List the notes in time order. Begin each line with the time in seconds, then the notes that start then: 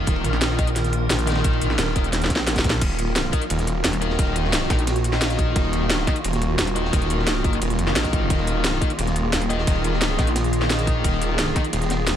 Already playing: D#3 A#3 D#4 F4 A#4 D#5
0.07 D#1, kick, closed hi-hat, ride
0.16 ride
0.24 A#1, closed hi-hat, ride
0.33 snare
0.41 snare, closed hi-hat, ride
0.50 snare
0.59 D#4 A#4 D#5, kick, closed hi-hat, ride
0.67 closed hi-hat, ride
0.76 snare, closed hi-hat, ride
0.84 snare, closed hi-hat
0.93 closed hi-hat, ride
1.10 A#1, snare, closed hi-hat, ride
1.19 closed hi-hat
1.27 D#4 A#4 D#5, snare, closed hi-hat, ride
1.32 snare, ride
1.35 snare, ride
1.44 kick, closed hi-hat, ride
1.53 ride
1.61 A#1, closed hi-hat, ride
1.70 snare
1.79 D#1, snare, closed hi-hat, ride
1.87 snare
1.96 D#4 A#4 D#5, kick, snare, closed hi-hat, ride
2.04 closed hi-hat
2.13 snare, closed hi-hat, ride
2.21 snare, closed hi-hat, ride
2.30 A#1, kick, snare, closed hi-hat, ride
2.36 snare
2.39 snare, ride
2.47 snare, closed hi-hat, ride
2.55 kick, snare, closed hi-hat, ride
2.59 snare
2.64 A#1, kick, snare, closed hi-hat, ride
2.70 snare
2.81 D#1 D#3 A#3 F4 F#4, kick, closed hi-hat, crash, ride, ride bell
2.90 ride
2.99 closed hi-hat, ride
3.16 snare, closed hi-hat, ride, ride bell
3.25 snare
3.33 D#4 A#4 D#5, kick, closed hi-hat, ride
3.42 closed hi-hat, ride
3.50 D#1, closed hi-hat, ride, ride bell
3.59 snare, closed hi-hat
3.67 closed hi-hat, ride
3.84 D#1, snare, closed hi-hat, ride, ride bell
3.93 snare, closed hi-hat
4.01 D#4 A#4 D#5, closed hi-hat, ride
4.10 snare
4.19 D#1, kick, closed hi-hat, ride, ride bell
4.27 ride
4.36 closed hi-hat, ride
4.44 snare
4.53 snare, closed hi-hat, ride, ride bell
4.62 snare
4.70 A#1 D#4 A#4 D#5, kick, snare, closed hi-hat, ride
4.79 closed hi-hat
4.87 snare, closed hi-hat, ride, ride bell
4.96 closed hi-hat
5.04 closed hi-hat, ride
5.13 D#4 A#4 D#5, snare, ride
5.21 snare, closed hi-hat, ride, ride bell
5.30 snare, closed hi-hat
5.39 kick, closed hi-hat, ride
5.56 D#1, kick, closed hi-hat, ride, ride bell
5.64 ride
5.73 closed hi-hat, ride
5.90 snare, closed hi-hat, ride, ride bell
5.99 snare
6.07 D#4 A#4 D#5, kick, snare, closed hi-hat, ride
6.16 closed hi-hat, ride
6.24 D#1, closed hi-hat, ride, ride bell
6.33 snare, closed hi-hat
6.42 closed hi-hat, ride
6.58 D#1, snare, closed hi-hat, ride, ride bell
6.67 snare, closed hi-hat
6.76 D#4 A#4 D#5, closed hi-hat, ride
6.85 snare
6.93 D#1, kick, closed hi-hat, ride, ride bell
7.02 closed hi-hat, ride
7.10 closed hi-hat, ride
7.19 snare
7.27 snare, closed hi-hat, ride, ride bell
7.36 snare
7.44 F#1 D#4 A#4 D#5, kick, closed hi-hat, ride
7.53 closed hi-hat
7.62 D#1, closed hi-hat, ride, ride bell
7.70 closed hi-hat
7.79 F1, closed hi-hat, ride
7.87 D#4 A#4 D#5, snare, ride
7.96 A#1, snare, closed hi-hat, ride, ride bell
8.04 kick, snare, closed hi-hat
8.13 kick, closed hi-hat, ride
8.30 D#1 G#4, kick, closed hi-hat, ride, ride bell
8.39 ride
8.47 closed hi-hat, ride
8.64 snare, closed hi-hat, ride, ride bell
8.73 snare
8.81 D#4 A#4 D#5, kick, closed hi-hat, ride
8.90 closed hi-hat, ride
8.99 D#1, closed hi-hat, ride, ride bell
9.07 snare, closed hi-hat
9.16 closed hi-hat, ride
9.33 D#1, snare, closed hi-hat, ride, ride bell
9.42 snare, closed hi-hat
9.50 D#4 A#4 D#5, closed hi-hat, ride
9.58 snare
9.67 D#1, kick, closed hi-hat, ride, ride bell
9.76 ride
9.84 closed hi-hat, ride
9.93 snare
10.01 snare, closed hi-hat, ride, ride bell
10.10 snare
10.18 A#1 D#4 A#4 D#5, kick, snare, closed hi-hat, ride
10.27 closed hi-hat
10.36 snare, closed hi-hat, ride, ride bell
10.44 closed hi-hat
10.53 closed hi-hat, ride
10.61 D#4 A#4 D#5, snare, ride
10.70 snare, closed hi-hat, ride, ride bell
10.79 snare, closed hi-hat
10.87 kick, closed hi-hat, ride
11.04 D#1, kick, closed hi-hat, ride, ride bell
11.14 ride
11.22 closed hi-hat, ride
11.38 snare, closed hi-hat, ride, ride bell
11.47 snare
11.56 D#4 A#4 D#5, kick, snare, closed hi-hat, ride
11.64 closed hi-hat, ride
11.73 D#1, closed hi-hat, ride, ride bell
11.82 snare, closed hi-hat
11.90 snare, closed hi-hat, ride
11.99 snare
12.07 D#1, snare, closed hi-hat, ride bell